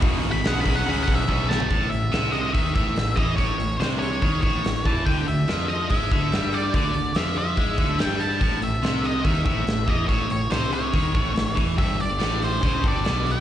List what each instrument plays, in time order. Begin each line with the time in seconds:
0.01 fingered electric bass E1, overdriven electric guitar E2 B2, kick, open hi-hat
0.23 fingered electric bass G#1, open hi-hat
0.32 lead electric guitar B5
0.44 fingered electric bass B1, overdriven electric guitar E2 C#3, lead electric guitar F#5, snare, open hi-hat
0.60 lead electric guitar B5
0.64 fingered electric bass B1, overdriven electric guitar E2 C#3, kick, open hi-hat
0.75 lead electric guitar F#5
0.85 fingered electric bass C#2, overdriven electric guitar E2 C#3, lead electric guitar B5, open hi-hat
1.03 lead electric guitar F#5
1.08 fingered electric bass B1, kick, open hi-hat
1.15 lead electric guitar E5
1.28 fingered electric bass B1, overdriven electric guitar E2 B2, kick
1.49 overdriven electric guitar E2 B2, lead electric guitar A5, snare
1.60 floor tom
1.70 fingered electric bass A1, overdriven electric guitar A2, kick, open hi-hat
1.90 fingered electric bass A1, overdriven electric guitar A2, lead electric guitar E5, open hi-hat
2.11 fingered electric bass C2, overdriven electric guitar C3, snare, open hi-hat
2.32 lead electric guitar D#5, open hi-hat
2.53 fingered electric bass D#2, overdriven electric guitar D#3, lead electric guitar E5, kick, open hi-hat
2.75 fingered electric bass A1, overdriven electric guitar A2, lead electric guitar E5, kick, open hi-hat
2.96 fingered electric bass A1, overdriven electric guitar A2, snare, open hi-hat
3.16 fingered electric bass E2, overdriven electric guitar E3, lead electric guitar D#5, kick
3.36 fingered electric bass A1, overdriven electric guitar A2, lead electric guitar C#5, kick, open hi-hat
3.58 fingered electric bass A1, overdriven electric guitar A2, open hi-hat
3.79 fingered electric bass C2, overdriven electric guitar C3, lead electric guitar C5, snare, open hi-hat
3.99 lead electric guitar C#5, open hi-hat
4.21 fingered electric bass D#2, overdriven electric guitar D#3, kick, open hi-hat
4.41 fingered electric bass A1, overdriven electric guitar A2, lead electric guitar C#5, kick, open hi-hat
4.65 fingered electric bass A1, overdriven electric guitar A2, snare, open hi-hat
4.85 fingered electric bass E2, overdriven electric guitar E3, lead electric guitar A5, kick, open hi-hat
5.05 fingered electric bass D2, overdriven electric guitar D3, lead electric guitar G5, kick, open hi-hat
5.28 fingered electric bass D2, overdriven electric guitar D3, lead electric guitar E5, open hi-hat
5.48 fingered electric bass F2, overdriven electric guitar F3, snare, open hi-hat
5.68 lead electric guitar D#5, open hi-hat
5.90 fingered electric bass G#2, overdriven electric guitar G#3, lead electric guitar E5, kick, open hi-hat
6.12 fingered electric bass D2, overdriven electric guitar D3, lead electric guitar E5, kick, open hi-hat
6.32 fingered electric bass G2, overdriven electric guitar G3, snare, open hi-hat
6.53 lead electric guitar D5, open hi-hat
6.74 fingered electric bass D2, overdriven electric guitar D3, lead electric guitar D5, kick, open hi-hat
6.94 fingered electric bass D2, overdriven electric guitar D3, open hi-hat
7.15 fingered electric bass F2, overdriven electric guitar F3, lead electric guitar E5, snare, open hi-hat
7.36 lead electric guitar E5, open hi-hat
7.57 fingered electric bass G#2, overdriven electric guitar G#3, kick, open hi-hat
7.77 fingered electric bass D2, overdriven electric guitar D3, kick, open hi-hat
7.98 fingered electric bass G2, overdriven electric guitar G3, lead electric guitar G5, snare, open hi-hat
8.20 lead electric guitar A5, open hi-hat
8.41 fingered electric bass A1, overdriven electric guitar A2, kick, open hi-hat
8.62 fingered electric bass A1, overdriven electric guitar A2, lead electric guitar E5, open hi-hat
8.81 fingered electric bass C2, overdriven electric guitar C3, snare, open hi-hat
9.04 lead electric guitar D#5, open hi-hat
9.24 fingered electric bass D#2, overdriven electric guitar D#3, lead electric guitar E5, kick, open hi-hat
9.45 fingered electric bass A1, overdriven electric guitar A2, lead electric guitar E5, kick, open hi-hat
9.66 fingered electric bass A1, overdriven electric guitar A2, snare, open hi-hat
9.87 fingered electric bass E2, overdriven electric guitar E3, lead electric guitar D#5, kick, open hi-hat
10.07 fingered electric bass A1, overdriven electric guitar A2, lead electric guitar C#5, kick, open hi-hat
10.29 fingered electric bass A1, overdriven electric guitar A2, lead electric guitar C#5, open hi-hat
10.51 fingered electric bass C2, overdriven electric guitar C3, lead electric guitar C5, snare, open hi-hat
10.72 lead electric guitar C#5, open hi-hat
10.94 fingered electric bass D#2, overdriven electric guitar D#3, kick, open hi-hat
11.14 fingered electric bass A1, overdriven electric guitar A2, kick, open hi-hat
11.35 fingered electric bass A1, overdriven electric guitar A2, snare, open hi-hat
11.55 fingered electric bass E2, overdriven electric guitar E3, kick, open hi-hat
11.77 fingered electric bass G1, overdriven electric guitar G2, lead electric guitar E5, kick, open hi-hat
11.98 fingered electric bass G1, overdriven electric guitar G2, lead electric guitar D5, open hi-hat
12.19 fingered electric bass A1, overdriven electric guitar A2, snare, open hi-hat
12.42 lead electric guitar C5, open hi-hat
12.63 fingered electric bass C#2, overdriven electric guitar C#3, lead electric guitar C5, kick, open hi-hat
12.83 fingered electric bass G1, overdriven electric guitar G2, kick, open hi-hat
12.88 lead electric guitar D5
13.04 fingered electric bass B1, overdriven electric guitar B2, snare, open hi-hat
13.26 open hi-hat
13.32 lead electric guitar G5